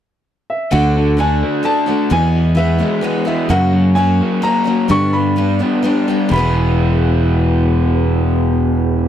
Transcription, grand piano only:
0.50 E5
0.72 F#5
1.20 G#5
1.65 A5
2.12 G#5
2.57 E5
3.27 E5
3.50 F#5
3.95 G#5
4.43 A#5
4.91 C#6
5.13 B5
6.32 B5

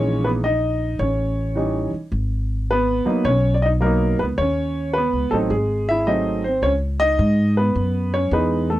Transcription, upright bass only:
Already playing: A#1
0.99 A1
1.93 muted upright bass stroke
2.12 G#1
3.06 muted upright bass stroke
3.25 B1
4.19 C#2
4.38 D#2
5.13 C#2
5.32 A1
5.50 G#1
6.62 C#2
7.19 G#2
7.75 F#2
8.31 E2

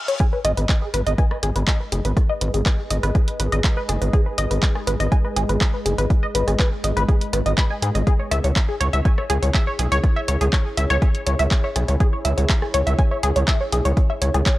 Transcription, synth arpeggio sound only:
0.08 C#5
0.20 G#4
0.33 B4
0.45 D#5
0.57 B4
0.82 G#4
0.94 B4
1.07 D#5
1.18 G#5
1.31 B4
1.43 G#4
1.56 B4
1.68 D#5
1.80 B4
1.92 G#4
2.05 B4
2.29 D#5
2.41 B4
2.54 G#4
2.66 B4
2.90 D#5
3.03 B4
3.15 G#4
3.40 B4
3.52 D#5
3.77 B4
3.89 G#4
4.02 B4
4.13 G#4
4.26 B4
4.38 D#5
4.51 B4
4.75 G#4
4.87 B4
5.00 D#5
5.12 G#5
5.25 B4
5.36 G#4
5.49 B4
5.61 D#5
5.74 B4
5.86 G#4
5.98 B4
6.23 D#5
6.35 B4
6.47 G#4
6.59 B4
6.84 D#5
6.97 B4
7.08 G#4
7.33 B4
7.46 D#5
7.58 B5
7.70 G#5
7.82 G#4
7.95 D#5
8.07 G#4
8.19 C#5
8.31 E5
8.44 C#5
8.69 G#4
8.80 C#5
8.93 E5
9.05 G#5
9.18 C#5
9.30 G#4
9.43 C#5
9.54 E5
9.67 C#5
9.79 G#4
9.92 C#5
10.16 E5
10.28 C#5
10.41 G#4
10.53 C#5
10.77 E5
10.90 C#5
11.02 G#4
11.26 C#5
11.39 E5
11.64 C#5
11.76 G#4
11.88 C#5
12.00 G#4
12.13 C#5
12.25 E5
12.37 C#5
12.62 G#4
12.74 C#5
12.87 E5
12.99 G#5
13.11 C#5
13.23 G#4
13.36 C#5
13.48 E5
13.61 C#5
13.73 G#4
13.85 C#5
14.10 E5
14.22 C#5
14.34 G#4
14.46 C#5

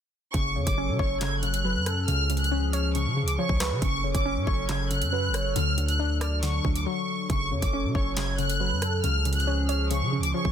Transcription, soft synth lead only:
0.56 C#5
1.65 B4
1.86 A4
3.38 C#5
3.60 B4
4.04 C#5
5.12 B4
5.34 C#5
7.51 C#5
8.60 B4
8.82 A4
10.34 C#5

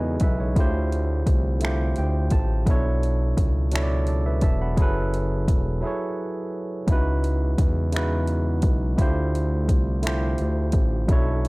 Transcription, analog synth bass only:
Already playing: E2
0.22 B1
0.57 D2
1.28 C2
1.99 D2
2.32 A1
2.68 B1
3.38 C#2
4.43 E1
4.78 F#1
5.49 E1
6.89 C#2
7.59 E2
8.64 B1
8.99 D2
9.70 C2
10.41 D2
10.74 A1
11.09 B1

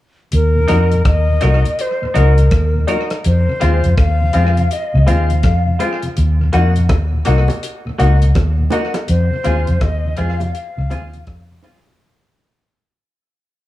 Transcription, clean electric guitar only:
0.68 D#4 F#4 A#4
1.41 D#4 F#4 A#4
1.64 muted clean electric guitar stroke
2.14 D#4 F#4 A#4
2.87 D#4 F#4 A#4
3.61 G#3 C4 F4
4.33 G#3 C4 F4
4.57 muted clean electric guitar stroke
5.07 G#3 C4 F4
5.79 G#3 C4 F4
6.53 A#3 D#4 F#4
7.25 A#3 D#4 F#4
7.48 muted clean electric guitar stroke
7.98 A#3 D#4 F#4
8.72 A#3 D#4 F#4
9.44 C4 F4 G#4
10.17 C4 F4 G#4
10.40 muted clean electric guitar stroke
10.91 C4 F4 G#4
11.63 C4 F4 G#4

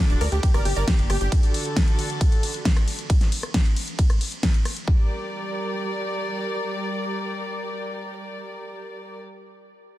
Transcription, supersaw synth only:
0.10 D4
0.21 A#4 D5
0.32 G4
0.43 G4
0.54 A#4 D5
0.65 G4
0.77 A#4 D5
0.88 G4
1.10 G4
1.21 G4

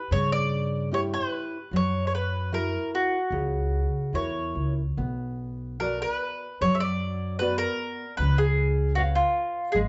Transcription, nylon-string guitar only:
0.12 C#3
0.91 C#4 E4 G4
1.73 F#3
2.52 E4 F#4 A#4
3.32 C#3
4.14 E4 F#4 A#4
4.98 B3
5.81 F#4 B4 D5
6.62 F#3
7.41 B3 F#4 D5
8.21 C#4
8.97 B4 C#5 F5
9.75 G#3

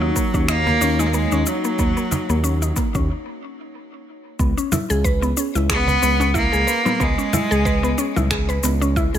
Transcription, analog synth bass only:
Already playing: D#2
0.34 D#2
0.82 D#2
1.32 D#2
1.79 D#2
2.30 D#2
2.95 D#2
4.40 C#2
4.90 C#2
5.55 C#2
6.03 C#2
6.53 C#2
7.01 C#2
7.52 C#2
8.17 C#2
8.64 C#2
9.14 C#2

